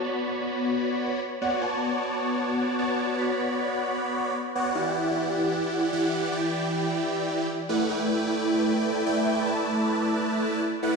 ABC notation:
X:1
M:4/4
L:1/8
Q:"Swing 16ths" 1/4=153
K:Bm
V:1 name="Supersaw synth"
[B,Fcdb]6 z [B,Fcdf] | [B,Fcda]6 [B,Fcda]2 | [B,Fcdb]6 z [B,Fcdf] | [E,EGdf]6 [E,EGdf]2 |
[E,EGdg]6 z [A,EBdf] | [A,EBdg]6 [A,EBdg]2 | [A,EBda]6 z [A,EBdf] |]